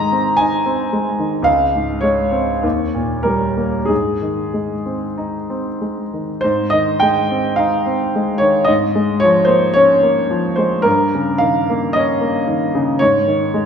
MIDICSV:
0, 0, Header, 1, 2, 480
1, 0, Start_track
1, 0, Key_signature, -4, "major"
1, 0, Tempo, 1081081
1, 654, Time_signature, 4, 2, 24, 8
1, 654, Tempo, 1171875
1, 1134, Tempo, 1260504
1, 2574, Tempo, 1153846
1, 3054, Tempo, 1090909
1, 4974, Tempo, 1061947
1, 5748, End_track
2, 0, Start_track
2, 0, Title_t, "Grand piano"
2, 0, Program_c, 0, 0
2, 0, Control_c, 0, 64, 127
2, 0, Note_on_c, 0, 44, 62
2, 0, Note_on_c, 0, 51, 49
2, 0, Note_on_c, 0, 56, 48
2, 0, Note_on_c, 0, 75, 93
2, 0, Note_on_c, 0, 82, 89
2, 54, Note_on_c, 0, 60, 46
2, 126, Note_off_c, 0, 56, 0
2, 163, Note_on_c, 0, 80, 87
2, 168, Note_off_c, 0, 82, 0
2, 176, Note_on_c, 0, 63, 54
2, 245, Note_off_c, 0, 60, 0
2, 292, Note_on_c, 0, 60, 50
2, 366, Note_off_c, 0, 63, 0
2, 411, Note_on_c, 0, 56, 47
2, 483, Note_off_c, 0, 60, 0
2, 529, Note_off_c, 0, 51, 0
2, 529, Note_on_c, 0, 51, 45
2, 604, Note_off_c, 0, 56, 0
2, 632, Note_on_c, 0, 37, 61
2, 637, Note_off_c, 0, 44, 0
2, 640, Note_on_c, 0, 77, 87
2, 648, Note_off_c, 0, 80, 0
2, 652, Note_off_c, 0, 51, 0
2, 660, Control_c, 0, 64, 0
2, 661, Note_off_c, 0, 75, 0
2, 721, Control_c, 0, 64, 127
2, 768, Note_on_c, 0, 44, 43
2, 873, Note_on_c, 0, 73, 72
2, 881, Note_off_c, 0, 77, 0
2, 882, Note_on_c, 0, 56, 43
2, 959, Note_off_c, 0, 44, 0
2, 999, Note_on_c, 0, 60, 49
2, 1080, Note_off_c, 0, 56, 0
2, 1109, Note_off_c, 0, 37, 0
2, 1128, Note_off_c, 0, 60, 0
2, 1128, Note_on_c, 0, 39, 59
2, 1141, Control_c, 0, 64, 0
2, 1205, Control_c, 0, 64, 127
2, 1248, Note_on_c, 0, 46, 41
2, 1356, Note_on_c, 0, 70, 68
2, 1364, Note_off_c, 0, 73, 0
2, 1364, Note_on_c, 0, 55, 42
2, 1441, Note_off_c, 0, 46, 0
2, 1486, Note_on_c, 0, 58, 41
2, 1561, Note_off_c, 0, 55, 0
2, 1595, Note_on_c, 0, 68, 60
2, 1596, Note_off_c, 0, 39, 0
2, 1604, Note_on_c, 0, 44, 50
2, 1606, Note_off_c, 0, 70, 0
2, 1611, Note_off_c, 0, 58, 0
2, 1620, Control_c, 0, 64, 0
2, 1701, Control_c, 0, 64, 127
2, 1733, Note_on_c, 0, 51, 39
2, 1855, Note_on_c, 0, 56, 37
2, 1928, Note_off_c, 0, 51, 0
2, 1976, Note_on_c, 0, 60, 37
2, 2048, Note_off_c, 0, 56, 0
2, 2098, Note_on_c, 0, 63, 40
2, 2169, Note_off_c, 0, 60, 0
2, 2221, Note_on_c, 0, 60, 38
2, 2291, Note_off_c, 0, 63, 0
2, 2331, Note_off_c, 0, 68, 0
2, 2341, Note_on_c, 0, 56, 35
2, 2414, Note_off_c, 0, 60, 0
2, 2463, Note_on_c, 0, 51, 33
2, 2529, Note_off_c, 0, 56, 0
2, 2554, Note_off_c, 0, 44, 0
2, 2567, Note_on_c, 0, 72, 80
2, 2575, Note_off_c, 0, 51, 0
2, 2580, Control_c, 0, 64, 0
2, 2580, Note_on_c, 0, 44, 58
2, 2660, Control_c, 0, 64, 127
2, 2688, Note_on_c, 0, 75, 85
2, 2691, Note_off_c, 0, 72, 0
2, 2701, Note_on_c, 0, 51, 48
2, 2811, Note_on_c, 0, 79, 89
2, 2812, Note_off_c, 0, 75, 0
2, 2822, Note_on_c, 0, 56, 50
2, 2891, Note_off_c, 0, 51, 0
2, 2942, Note_on_c, 0, 60, 53
2, 3010, Note_off_c, 0, 56, 0
2, 3046, Note_on_c, 0, 77, 80
2, 3052, Note_off_c, 0, 79, 0
2, 3058, Note_on_c, 0, 63, 55
2, 3131, Note_off_c, 0, 60, 0
2, 3178, Note_on_c, 0, 60, 53
2, 3253, Note_off_c, 0, 63, 0
2, 3307, Note_on_c, 0, 56, 50
2, 3372, Note_off_c, 0, 60, 0
2, 3406, Note_on_c, 0, 73, 82
2, 3415, Note_off_c, 0, 77, 0
2, 3421, Note_on_c, 0, 51, 43
2, 3495, Note_off_c, 0, 56, 0
2, 3523, Note_on_c, 0, 75, 83
2, 3525, Note_off_c, 0, 44, 0
2, 3533, Note_off_c, 0, 73, 0
2, 3538, Note_on_c, 0, 44, 67
2, 3540, Note_off_c, 0, 51, 0
2, 3546, Control_c, 0, 64, 0
2, 3609, Control_c, 0, 64, 127
2, 3658, Note_on_c, 0, 56, 53
2, 3766, Note_on_c, 0, 73, 86
2, 3768, Note_off_c, 0, 75, 0
2, 3782, Note_on_c, 0, 53, 51
2, 3848, Note_off_c, 0, 56, 0
2, 3876, Note_on_c, 0, 72, 80
2, 3886, Note_on_c, 0, 58, 47
2, 3890, Note_off_c, 0, 73, 0
2, 3969, Note_off_c, 0, 53, 0
2, 4002, Note_on_c, 0, 73, 94
2, 4004, Note_off_c, 0, 72, 0
2, 4015, Note_on_c, 0, 61, 53
2, 4081, Note_off_c, 0, 58, 0
2, 4131, Note_on_c, 0, 58, 48
2, 4206, Note_off_c, 0, 61, 0
2, 4253, Note_on_c, 0, 53, 48
2, 4325, Note_off_c, 0, 58, 0
2, 4364, Note_on_c, 0, 72, 71
2, 4369, Note_off_c, 0, 73, 0
2, 4374, Note_on_c, 0, 56, 44
2, 4447, Note_off_c, 0, 53, 0
2, 4477, Note_off_c, 0, 44, 0
2, 4480, Note_on_c, 0, 70, 88
2, 4490, Note_off_c, 0, 72, 0
2, 4494, Note_on_c, 0, 43, 61
2, 4495, Note_off_c, 0, 56, 0
2, 4502, Control_c, 0, 64, 0
2, 4584, Control_c, 0, 64, 127
2, 4623, Note_on_c, 0, 49, 47
2, 4727, Note_on_c, 0, 77, 79
2, 4728, Note_off_c, 0, 70, 0
2, 4737, Note_on_c, 0, 51, 52
2, 4811, Note_off_c, 0, 49, 0
2, 4865, Note_on_c, 0, 58, 53
2, 4925, Note_off_c, 0, 51, 0
2, 4968, Note_off_c, 0, 77, 0
2, 4969, Note_on_c, 0, 75, 82
2, 4981, Note_on_c, 0, 61, 56
2, 5049, Note_off_c, 0, 58, 0
2, 5094, Note_on_c, 0, 58, 50
2, 5168, Note_off_c, 0, 61, 0
2, 5214, Note_on_c, 0, 51, 54
2, 5283, Note_off_c, 0, 58, 0
2, 5337, Note_on_c, 0, 49, 53
2, 5403, Note_off_c, 0, 51, 0
2, 5430, Note_off_c, 0, 43, 0
2, 5447, Note_off_c, 0, 75, 0
2, 5447, Note_on_c, 0, 73, 88
2, 5453, Note_off_c, 0, 49, 0
2, 5456, Control_c, 0, 64, 0
2, 5458, Note_on_c, 0, 44, 61
2, 5523, Control_c, 0, 64, 127
2, 5575, Note_on_c, 0, 51, 51
2, 5696, Note_on_c, 0, 56, 50
2, 5748, Note_off_c, 0, 44, 0
2, 5748, Note_off_c, 0, 51, 0
2, 5748, Note_off_c, 0, 56, 0
2, 5748, Note_off_c, 0, 73, 0
2, 5748, End_track
0, 0, End_of_file